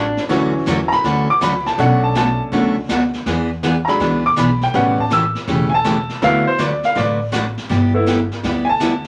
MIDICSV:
0, 0, Header, 1, 6, 480
1, 0, Start_track
1, 0, Key_signature, 2, "major"
1, 0, Tempo, 369686
1, 391, Time_signature, 4, 2, 24, 8
1, 11778, End_track
2, 0, Start_track
2, 0, Title_t, "Upright piano"
2, 0, Program_c, 0, 0
2, 379, Note_on_c, 0, 52, 59
2, 388, Note_on_c, 0, 54, 50
2, 396, Note_on_c, 0, 61, 65
2, 1145, Note_on_c, 0, 82, 69
2, 1169, Note_off_c, 0, 82, 0
2, 1202, Note_on_c, 0, 83, 102
2, 1662, Note_off_c, 0, 83, 0
2, 1690, Note_on_c, 0, 86, 86
2, 1839, Note_off_c, 0, 86, 0
2, 1850, Note_on_c, 0, 83, 84
2, 2149, Note_off_c, 0, 83, 0
2, 2161, Note_on_c, 0, 81, 78
2, 2256, Note_off_c, 0, 52, 0
2, 2260, Note_off_c, 0, 54, 0
2, 2264, Note_off_c, 0, 61, 0
2, 2312, Note_on_c, 0, 62, 59
2, 2315, Note_off_c, 0, 81, 0
2, 2318, Note_on_c, 0, 57, 51
2, 2327, Note_on_c, 0, 61, 65
2, 2335, Note_on_c, 0, 78, 83
2, 2632, Note_off_c, 0, 78, 0
2, 2644, Note_on_c, 0, 81, 80
2, 2793, Note_off_c, 0, 81, 0
2, 2812, Note_on_c, 0, 81, 97
2, 3110, Note_off_c, 0, 81, 0
2, 3261, Note_off_c, 0, 57, 0
2, 3266, Note_off_c, 0, 61, 0
2, 3275, Note_on_c, 0, 50, 48
2, 3281, Note_on_c, 0, 57, 47
2, 3286, Note_on_c, 0, 61, 50
2, 3560, Note_off_c, 0, 50, 0
2, 3563, Note_off_c, 0, 57, 0
2, 3566, Note_off_c, 0, 61, 0
2, 4183, Note_off_c, 0, 62, 0
2, 4996, Note_on_c, 0, 82, 67
2, 5019, Note_off_c, 0, 82, 0
2, 5032, Note_on_c, 0, 54, 54
2, 5040, Note_on_c, 0, 56, 48
2, 5045, Note_on_c, 0, 62, 58
2, 5054, Note_on_c, 0, 83, 94
2, 5308, Note_off_c, 0, 54, 0
2, 5312, Note_off_c, 0, 56, 0
2, 5315, Note_off_c, 0, 62, 0
2, 5509, Note_off_c, 0, 83, 0
2, 5531, Note_on_c, 0, 86, 88
2, 5681, Note_off_c, 0, 86, 0
2, 5693, Note_on_c, 0, 83, 80
2, 5991, Note_off_c, 0, 83, 0
2, 6017, Note_on_c, 0, 79, 81
2, 6149, Note_on_c, 0, 55, 59
2, 6160, Note_on_c, 0, 59, 49
2, 6164, Note_off_c, 0, 79, 0
2, 6167, Note_on_c, 0, 61, 61
2, 6174, Note_on_c, 0, 78, 86
2, 6472, Note_off_c, 0, 78, 0
2, 6494, Note_on_c, 0, 81, 74
2, 6515, Note_off_c, 0, 55, 0
2, 6521, Note_off_c, 0, 59, 0
2, 6525, Note_off_c, 0, 61, 0
2, 6642, Note_off_c, 0, 81, 0
2, 6658, Note_on_c, 0, 88, 91
2, 6954, Note_off_c, 0, 88, 0
2, 7395, Note_on_c, 0, 80, 64
2, 7418, Note_off_c, 0, 80, 0
2, 7457, Note_on_c, 0, 81, 104
2, 8069, Note_off_c, 0, 81, 0
2, 8073, Note_on_c, 0, 54, 56
2, 8083, Note_on_c, 0, 59, 51
2, 8089, Note_on_c, 0, 64, 61
2, 8100, Note_on_c, 0, 77, 97
2, 8394, Note_off_c, 0, 77, 0
2, 8405, Note_on_c, 0, 72, 85
2, 8436, Note_off_c, 0, 54, 0
2, 8442, Note_off_c, 0, 59, 0
2, 8445, Note_off_c, 0, 64, 0
2, 8557, Note_off_c, 0, 72, 0
2, 8577, Note_on_c, 0, 74, 84
2, 8873, Note_off_c, 0, 74, 0
2, 8895, Note_on_c, 0, 77, 81
2, 9042, Note_off_c, 0, 77, 0
2, 9054, Note_on_c, 0, 74, 93
2, 9351, Note_off_c, 0, 74, 0
2, 10306, Note_on_c, 0, 57, 55
2, 10316, Note_on_c, 0, 59, 52
2, 10325, Note_on_c, 0, 64, 61
2, 10583, Note_off_c, 0, 57, 0
2, 10588, Note_off_c, 0, 59, 0
2, 10593, Note_off_c, 0, 64, 0
2, 11228, Note_on_c, 0, 80, 68
2, 11252, Note_off_c, 0, 80, 0
2, 11288, Note_on_c, 0, 81, 91
2, 11778, Note_off_c, 0, 81, 0
2, 11778, End_track
3, 0, Start_track
3, 0, Title_t, "Electric slide guitar"
3, 0, Program_c, 1, 29
3, 0, Note_on_c, 1, 62, 85
3, 301, Note_off_c, 1, 62, 0
3, 11778, End_track
4, 0, Start_track
4, 0, Title_t, "Steel-string acoustic guitar"
4, 0, Program_c, 2, 25
4, 379, Note_on_c, 2, 50, 58
4, 383, Note_on_c, 2, 54, 60
4, 388, Note_on_c, 2, 57, 60
4, 391, Note_on_c, 2, 61, 58
4, 393, Note_on_c, 2, 66, 58
4, 678, Note_off_c, 2, 50, 0
4, 680, Note_off_c, 2, 54, 0
4, 682, Note_off_c, 2, 57, 0
4, 684, Note_off_c, 2, 61, 0
4, 684, Note_off_c, 2, 66, 0
4, 859, Note_on_c, 2, 50, 69
4, 868, Note_on_c, 2, 54, 79
4, 875, Note_on_c, 2, 57, 76
4, 877, Note_on_c, 2, 61, 75
4, 880, Note_on_c, 2, 66, 85
4, 1020, Note_off_c, 2, 50, 0
4, 1025, Note_off_c, 2, 54, 0
4, 1028, Note_off_c, 2, 57, 0
4, 1029, Note_off_c, 2, 61, 0
4, 1031, Note_off_c, 2, 66, 0
4, 1351, Note_on_c, 2, 50, 60
4, 1355, Note_on_c, 2, 54, 55
4, 1359, Note_on_c, 2, 57, 58
4, 1363, Note_on_c, 2, 61, 65
4, 1367, Note_on_c, 2, 66, 61
4, 1644, Note_off_c, 2, 50, 0
4, 1646, Note_off_c, 2, 54, 0
4, 1648, Note_off_c, 2, 57, 0
4, 1650, Note_off_c, 2, 61, 0
4, 1652, Note_off_c, 2, 66, 0
4, 1829, Note_on_c, 2, 50, 73
4, 1835, Note_on_c, 2, 54, 72
4, 1835, Note_on_c, 2, 57, 77
4, 1840, Note_on_c, 2, 61, 77
4, 1845, Note_on_c, 2, 66, 80
4, 1986, Note_off_c, 2, 50, 0
4, 1989, Note_off_c, 2, 54, 0
4, 1989, Note_off_c, 2, 57, 0
4, 1991, Note_off_c, 2, 61, 0
4, 1994, Note_off_c, 2, 66, 0
4, 2318, Note_on_c, 2, 47, 56
4, 2319, Note_on_c, 2, 54, 60
4, 2322, Note_on_c, 2, 57, 57
4, 2332, Note_on_c, 2, 62, 63
4, 2332, Note_on_c, 2, 66, 64
4, 2608, Note_off_c, 2, 47, 0
4, 2609, Note_off_c, 2, 54, 0
4, 2610, Note_off_c, 2, 57, 0
4, 2615, Note_off_c, 2, 62, 0
4, 2615, Note_off_c, 2, 66, 0
4, 2794, Note_on_c, 2, 47, 64
4, 2798, Note_on_c, 2, 54, 68
4, 2801, Note_on_c, 2, 57, 69
4, 2809, Note_on_c, 2, 62, 77
4, 2812, Note_on_c, 2, 66, 69
4, 2949, Note_off_c, 2, 47, 0
4, 2951, Note_off_c, 2, 54, 0
4, 2953, Note_off_c, 2, 57, 0
4, 2957, Note_off_c, 2, 62, 0
4, 2958, Note_off_c, 2, 66, 0
4, 3269, Note_on_c, 2, 47, 56
4, 3282, Note_on_c, 2, 54, 56
4, 3286, Note_on_c, 2, 57, 65
4, 3286, Note_on_c, 2, 62, 61
4, 3289, Note_on_c, 2, 66, 64
4, 3564, Note_off_c, 2, 47, 0
4, 3570, Note_off_c, 2, 54, 0
4, 3573, Note_off_c, 2, 57, 0
4, 3573, Note_off_c, 2, 62, 0
4, 3574, Note_off_c, 2, 66, 0
4, 3759, Note_on_c, 2, 47, 81
4, 3771, Note_on_c, 2, 54, 70
4, 3774, Note_on_c, 2, 57, 72
4, 3778, Note_on_c, 2, 62, 79
4, 3782, Note_on_c, 2, 66, 79
4, 3912, Note_off_c, 2, 47, 0
4, 3918, Note_off_c, 2, 54, 0
4, 3919, Note_off_c, 2, 57, 0
4, 3921, Note_off_c, 2, 62, 0
4, 3923, Note_off_c, 2, 66, 0
4, 4240, Note_on_c, 2, 52, 64
4, 4244, Note_on_c, 2, 59, 56
4, 4250, Note_on_c, 2, 62, 58
4, 4254, Note_on_c, 2, 68, 66
4, 4530, Note_off_c, 2, 52, 0
4, 4532, Note_off_c, 2, 59, 0
4, 4535, Note_off_c, 2, 62, 0
4, 4537, Note_off_c, 2, 68, 0
4, 4714, Note_on_c, 2, 52, 68
4, 4722, Note_on_c, 2, 59, 70
4, 4730, Note_on_c, 2, 68, 76
4, 4731, Note_on_c, 2, 62, 76
4, 4870, Note_off_c, 2, 52, 0
4, 4874, Note_off_c, 2, 59, 0
4, 4878, Note_off_c, 2, 62, 0
4, 4878, Note_off_c, 2, 68, 0
4, 5192, Note_on_c, 2, 52, 58
4, 5199, Note_on_c, 2, 59, 63
4, 5205, Note_on_c, 2, 62, 59
4, 5211, Note_on_c, 2, 68, 62
4, 5486, Note_off_c, 2, 52, 0
4, 5490, Note_off_c, 2, 59, 0
4, 5493, Note_off_c, 2, 62, 0
4, 5495, Note_off_c, 2, 68, 0
4, 5665, Note_on_c, 2, 52, 69
4, 5672, Note_on_c, 2, 59, 76
4, 5675, Note_on_c, 2, 62, 69
4, 5683, Note_on_c, 2, 68, 71
4, 5825, Note_off_c, 2, 52, 0
4, 5828, Note_off_c, 2, 59, 0
4, 5830, Note_off_c, 2, 62, 0
4, 5834, Note_off_c, 2, 68, 0
4, 6149, Note_on_c, 2, 49, 51
4, 6154, Note_on_c, 2, 52, 57
4, 6159, Note_on_c, 2, 57, 58
4, 6165, Note_on_c, 2, 61, 56
4, 6167, Note_on_c, 2, 67, 57
4, 6444, Note_off_c, 2, 49, 0
4, 6447, Note_off_c, 2, 52, 0
4, 6449, Note_off_c, 2, 57, 0
4, 6452, Note_off_c, 2, 61, 0
4, 6453, Note_off_c, 2, 67, 0
4, 6626, Note_on_c, 2, 49, 68
4, 6636, Note_on_c, 2, 52, 78
4, 6640, Note_on_c, 2, 57, 76
4, 6644, Note_on_c, 2, 61, 77
4, 6647, Note_on_c, 2, 67, 78
4, 6786, Note_off_c, 2, 49, 0
4, 6790, Note_off_c, 2, 52, 0
4, 6793, Note_off_c, 2, 57, 0
4, 6795, Note_off_c, 2, 61, 0
4, 6796, Note_off_c, 2, 67, 0
4, 7108, Note_on_c, 2, 49, 58
4, 7116, Note_on_c, 2, 57, 59
4, 7118, Note_on_c, 2, 52, 55
4, 7122, Note_on_c, 2, 61, 60
4, 7127, Note_on_c, 2, 67, 62
4, 7404, Note_off_c, 2, 49, 0
4, 7408, Note_off_c, 2, 57, 0
4, 7409, Note_off_c, 2, 52, 0
4, 7411, Note_off_c, 2, 61, 0
4, 7413, Note_off_c, 2, 67, 0
4, 7589, Note_on_c, 2, 49, 74
4, 7591, Note_on_c, 2, 52, 79
4, 7594, Note_on_c, 2, 57, 73
4, 7600, Note_on_c, 2, 61, 71
4, 7604, Note_on_c, 2, 67, 83
4, 7747, Note_off_c, 2, 49, 0
4, 7748, Note_off_c, 2, 52, 0
4, 7749, Note_off_c, 2, 57, 0
4, 7752, Note_off_c, 2, 61, 0
4, 7754, Note_off_c, 2, 67, 0
4, 8075, Note_on_c, 2, 50, 52
4, 8080, Note_on_c, 2, 54, 57
4, 8082, Note_on_c, 2, 57, 57
4, 8085, Note_on_c, 2, 62, 62
4, 8087, Note_on_c, 2, 71, 60
4, 8088, Note_on_c, 2, 66, 63
4, 8367, Note_off_c, 2, 50, 0
4, 8370, Note_off_c, 2, 54, 0
4, 8370, Note_off_c, 2, 57, 0
4, 8372, Note_off_c, 2, 62, 0
4, 8373, Note_off_c, 2, 71, 0
4, 8374, Note_off_c, 2, 66, 0
4, 8546, Note_on_c, 2, 50, 70
4, 8550, Note_on_c, 2, 54, 70
4, 8553, Note_on_c, 2, 57, 71
4, 8557, Note_on_c, 2, 66, 67
4, 8558, Note_on_c, 2, 62, 69
4, 8561, Note_on_c, 2, 71, 76
4, 8705, Note_off_c, 2, 50, 0
4, 8707, Note_off_c, 2, 54, 0
4, 8708, Note_off_c, 2, 57, 0
4, 8711, Note_off_c, 2, 62, 0
4, 8711, Note_off_c, 2, 66, 0
4, 8713, Note_off_c, 2, 71, 0
4, 9027, Note_on_c, 2, 50, 55
4, 9027, Note_on_c, 2, 54, 56
4, 9034, Note_on_c, 2, 62, 59
4, 9035, Note_on_c, 2, 57, 54
4, 9039, Note_on_c, 2, 66, 60
4, 9042, Note_on_c, 2, 71, 61
4, 9322, Note_off_c, 2, 50, 0
4, 9322, Note_off_c, 2, 54, 0
4, 9326, Note_off_c, 2, 62, 0
4, 9327, Note_off_c, 2, 57, 0
4, 9329, Note_off_c, 2, 66, 0
4, 9330, Note_off_c, 2, 71, 0
4, 9502, Note_on_c, 2, 50, 71
4, 9507, Note_on_c, 2, 57, 70
4, 9509, Note_on_c, 2, 54, 73
4, 9514, Note_on_c, 2, 62, 72
4, 9515, Note_on_c, 2, 66, 83
4, 9519, Note_on_c, 2, 71, 83
4, 9662, Note_off_c, 2, 50, 0
4, 9665, Note_off_c, 2, 57, 0
4, 9666, Note_off_c, 2, 54, 0
4, 9668, Note_off_c, 2, 62, 0
4, 9669, Note_off_c, 2, 66, 0
4, 9671, Note_off_c, 2, 71, 0
4, 9989, Note_on_c, 2, 55, 54
4, 9991, Note_on_c, 2, 59, 62
4, 10000, Note_on_c, 2, 64, 61
4, 10005, Note_on_c, 2, 67, 58
4, 10283, Note_off_c, 2, 55, 0
4, 10284, Note_off_c, 2, 59, 0
4, 10288, Note_off_c, 2, 64, 0
4, 10290, Note_off_c, 2, 67, 0
4, 10471, Note_on_c, 2, 55, 70
4, 10480, Note_on_c, 2, 59, 74
4, 10486, Note_on_c, 2, 64, 72
4, 10491, Note_on_c, 2, 67, 81
4, 10626, Note_off_c, 2, 55, 0
4, 10631, Note_off_c, 2, 59, 0
4, 10634, Note_off_c, 2, 64, 0
4, 10636, Note_off_c, 2, 67, 0
4, 10961, Note_on_c, 2, 55, 55
4, 10963, Note_on_c, 2, 59, 58
4, 10972, Note_on_c, 2, 64, 62
4, 10975, Note_on_c, 2, 67, 58
4, 11248, Note_off_c, 2, 55, 0
4, 11249, Note_off_c, 2, 59, 0
4, 11253, Note_off_c, 2, 64, 0
4, 11255, Note_off_c, 2, 67, 0
4, 11425, Note_on_c, 2, 55, 73
4, 11432, Note_on_c, 2, 59, 69
4, 11441, Note_on_c, 2, 64, 81
4, 11444, Note_on_c, 2, 67, 78
4, 11582, Note_off_c, 2, 55, 0
4, 11586, Note_off_c, 2, 59, 0
4, 11591, Note_off_c, 2, 64, 0
4, 11592, Note_off_c, 2, 67, 0
4, 11778, End_track
5, 0, Start_track
5, 0, Title_t, "Upright bass"
5, 0, Program_c, 3, 32
5, 0, Note_on_c, 3, 33, 85
5, 199, Note_off_c, 3, 33, 0
5, 383, Note_on_c, 3, 38, 85
5, 771, Note_off_c, 3, 38, 0
5, 870, Note_on_c, 3, 40, 80
5, 1279, Note_off_c, 3, 40, 0
5, 1347, Note_on_c, 3, 38, 75
5, 1758, Note_off_c, 3, 38, 0
5, 1830, Note_on_c, 3, 37, 74
5, 2240, Note_off_c, 3, 37, 0
5, 2310, Note_on_c, 3, 35, 99
5, 3080, Note_off_c, 3, 35, 0
5, 3274, Note_on_c, 3, 37, 88
5, 3683, Note_off_c, 3, 37, 0
5, 3753, Note_on_c, 3, 38, 70
5, 4162, Note_off_c, 3, 38, 0
5, 4233, Note_on_c, 3, 40, 94
5, 5002, Note_off_c, 3, 40, 0
5, 5195, Note_on_c, 3, 37, 82
5, 5603, Note_off_c, 3, 37, 0
5, 5673, Note_on_c, 3, 35, 77
5, 6082, Note_off_c, 3, 35, 0
5, 6152, Note_on_c, 3, 33, 94
5, 6921, Note_off_c, 3, 33, 0
5, 7110, Note_on_c, 3, 28, 85
5, 7880, Note_off_c, 3, 28, 0
5, 8075, Note_on_c, 3, 38, 90
5, 8842, Note_off_c, 3, 38, 0
5, 9034, Note_on_c, 3, 33, 80
5, 9801, Note_off_c, 3, 33, 0
5, 9996, Note_on_c, 3, 31, 99
5, 10762, Note_off_c, 3, 31, 0
5, 10949, Note_on_c, 3, 38, 81
5, 11717, Note_off_c, 3, 38, 0
5, 11778, End_track
6, 0, Start_track
6, 0, Title_t, "Drums"
6, 221, Note_on_c, 9, 38, 39
6, 351, Note_off_c, 9, 38, 0
6, 386, Note_on_c, 9, 36, 20
6, 387, Note_on_c, 9, 25, 51
6, 387, Note_on_c, 9, 38, 46
6, 516, Note_off_c, 9, 36, 0
6, 517, Note_off_c, 9, 38, 0
6, 867, Note_on_c, 9, 38, 56
6, 867, Note_on_c, 9, 44, 57
6, 868, Note_on_c, 9, 36, 19
6, 997, Note_off_c, 9, 38, 0
6, 997, Note_off_c, 9, 44, 0
6, 998, Note_off_c, 9, 36, 0
6, 1190, Note_on_c, 9, 38, 38
6, 1320, Note_off_c, 9, 38, 0
6, 1350, Note_off_c, 9, 25, 0
6, 1350, Note_on_c, 9, 25, 49
6, 1350, Note_on_c, 9, 36, 25
6, 1350, Note_on_c, 9, 38, 45
6, 1479, Note_off_c, 9, 36, 0
6, 1480, Note_off_c, 9, 38, 0
6, 1832, Note_on_c, 9, 36, 26
6, 1839, Note_on_c, 9, 38, 69
6, 1839, Note_on_c, 9, 44, 71
6, 1962, Note_off_c, 9, 36, 0
6, 1969, Note_off_c, 9, 38, 0
6, 1969, Note_off_c, 9, 44, 0
6, 2155, Note_on_c, 9, 38, 39
6, 2285, Note_off_c, 9, 38, 0
6, 2312, Note_on_c, 9, 36, 18
6, 2315, Note_off_c, 9, 25, 0
6, 2315, Note_on_c, 9, 25, 52
6, 2315, Note_on_c, 9, 38, 45
6, 2442, Note_off_c, 9, 36, 0
6, 2444, Note_off_c, 9, 38, 0
6, 2791, Note_on_c, 9, 36, 22
6, 2792, Note_on_c, 9, 38, 59
6, 2792, Note_on_c, 9, 44, 53
6, 2921, Note_off_c, 9, 36, 0
6, 2922, Note_off_c, 9, 38, 0
6, 2922, Note_off_c, 9, 44, 0
6, 3274, Note_on_c, 9, 36, 25
6, 3278, Note_off_c, 9, 25, 0
6, 3278, Note_on_c, 9, 25, 51
6, 3278, Note_on_c, 9, 38, 45
6, 3403, Note_off_c, 9, 36, 0
6, 3408, Note_off_c, 9, 38, 0
6, 3750, Note_on_c, 9, 38, 67
6, 3750, Note_on_c, 9, 44, 54
6, 3753, Note_on_c, 9, 36, 23
6, 3880, Note_off_c, 9, 38, 0
6, 3880, Note_off_c, 9, 44, 0
6, 3882, Note_off_c, 9, 36, 0
6, 4067, Note_on_c, 9, 38, 38
6, 4196, Note_off_c, 9, 38, 0
6, 4232, Note_off_c, 9, 25, 0
6, 4232, Note_on_c, 9, 25, 43
6, 4232, Note_on_c, 9, 36, 27
6, 4232, Note_on_c, 9, 38, 50
6, 4362, Note_off_c, 9, 36, 0
6, 4362, Note_off_c, 9, 38, 0
6, 4713, Note_on_c, 9, 38, 59
6, 4713, Note_on_c, 9, 44, 58
6, 4714, Note_on_c, 9, 36, 24
6, 4843, Note_off_c, 9, 36, 0
6, 4843, Note_off_c, 9, 38, 0
6, 4843, Note_off_c, 9, 44, 0
6, 5031, Note_on_c, 9, 38, 40
6, 5161, Note_off_c, 9, 38, 0
6, 5195, Note_on_c, 9, 36, 23
6, 5197, Note_off_c, 9, 25, 0
6, 5197, Note_on_c, 9, 25, 47
6, 5197, Note_on_c, 9, 38, 45
6, 5325, Note_off_c, 9, 36, 0
6, 5327, Note_off_c, 9, 38, 0
6, 5671, Note_on_c, 9, 38, 64
6, 5671, Note_on_c, 9, 44, 67
6, 5672, Note_on_c, 9, 36, 19
6, 5800, Note_off_c, 9, 38, 0
6, 5800, Note_off_c, 9, 44, 0
6, 5802, Note_off_c, 9, 36, 0
6, 5988, Note_on_c, 9, 38, 35
6, 6118, Note_off_c, 9, 38, 0
6, 6151, Note_off_c, 9, 25, 0
6, 6151, Note_on_c, 9, 25, 49
6, 6151, Note_on_c, 9, 38, 47
6, 6152, Note_on_c, 9, 36, 22
6, 6280, Note_off_c, 9, 38, 0
6, 6282, Note_off_c, 9, 36, 0
6, 6468, Note_on_c, 9, 36, 42
6, 6598, Note_off_c, 9, 36, 0
6, 6628, Note_on_c, 9, 38, 60
6, 6628, Note_on_c, 9, 44, 55
6, 6631, Note_on_c, 9, 36, 19
6, 6757, Note_off_c, 9, 38, 0
6, 6757, Note_off_c, 9, 44, 0
6, 6761, Note_off_c, 9, 36, 0
6, 6948, Note_on_c, 9, 38, 41
6, 7077, Note_off_c, 9, 38, 0
6, 7108, Note_off_c, 9, 25, 0
6, 7108, Note_on_c, 9, 25, 51
6, 7108, Note_on_c, 9, 38, 46
6, 7110, Note_on_c, 9, 36, 27
6, 7238, Note_off_c, 9, 38, 0
6, 7240, Note_off_c, 9, 36, 0
6, 7592, Note_on_c, 9, 36, 21
6, 7593, Note_on_c, 9, 38, 64
6, 7593, Note_on_c, 9, 44, 61
6, 7722, Note_off_c, 9, 36, 0
6, 7722, Note_off_c, 9, 38, 0
6, 7722, Note_off_c, 9, 44, 0
6, 7911, Note_on_c, 9, 38, 41
6, 8040, Note_off_c, 9, 38, 0
6, 8072, Note_off_c, 9, 25, 0
6, 8072, Note_on_c, 9, 25, 45
6, 8072, Note_on_c, 9, 36, 23
6, 8072, Note_on_c, 9, 38, 46
6, 8202, Note_off_c, 9, 36, 0
6, 8202, Note_off_c, 9, 38, 0
6, 8552, Note_on_c, 9, 38, 58
6, 8552, Note_on_c, 9, 44, 51
6, 8554, Note_on_c, 9, 36, 25
6, 8681, Note_off_c, 9, 38, 0
6, 8681, Note_off_c, 9, 44, 0
6, 8683, Note_off_c, 9, 36, 0
6, 8870, Note_on_c, 9, 38, 42
6, 9000, Note_off_c, 9, 38, 0
6, 9034, Note_on_c, 9, 36, 22
6, 9037, Note_off_c, 9, 25, 0
6, 9037, Note_on_c, 9, 25, 49
6, 9037, Note_on_c, 9, 38, 44
6, 9164, Note_off_c, 9, 36, 0
6, 9167, Note_off_c, 9, 38, 0
6, 9514, Note_on_c, 9, 36, 27
6, 9516, Note_on_c, 9, 38, 67
6, 9516, Note_on_c, 9, 44, 72
6, 9644, Note_off_c, 9, 36, 0
6, 9646, Note_off_c, 9, 38, 0
6, 9646, Note_off_c, 9, 44, 0
6, 9836, Note_on_c, 9, 38, 39
6, 9965, Note_off_c, 9, 38, 0
6, 9994, Note_on_c, 9, 36, 24
6, 9998, Note_off_c, 9, 25, 0
6, 9998, Note_on_c, 9, 25, 47
6, 9998, Note_on_c, 9, 38, 48
6, 10123, Note_off_c, 9, 36, 0
6, 10128, Note_off_c, 9, 38, 0
6, 10473, Note_on_c, 9, 36, 23
6, 10475, Note_on_c, 9, 38, 55
6, 10475, Note_on_c, 9, 44, 44
6, 10603, Note_off_c, 9, 36, 0
6, 10605, Note_off_c, 9, 38, 0
6, 10605, Note_off_c, 9, 44, 0
6, 10795, Note_on_c, 9, 38, 41
6, 10925, Note_off_c, 9, 38, 0
6, 10950, Note_on_c, 9, 36, 29
6, 10951, Note_off_c, 9, 25, 0
6, 10951, Note_on_c, 9, 25, 50
6, 10951, Note_on_c, 9, 38, 49
6, 11080, Note_off_c, 9, 36, 0
6, 11081, Note_off_c, 9, 38, 0
6, 11428, Note_on_c, 9, 38, 70
6, 11428, Note_on_c, 9, 44, 70
6, 11429, Note_on_c, 9, 36, 21
6, 11558, Note_off_c, 9, 38, 0
6, 11558, Note_off_c, 9, 44, 0
6, 11559, Note_off_c, 9, 36, 0
6, 11778, Note_off_c, 9, 25, 0
6, 11778, End_track
0, 0, End_of_file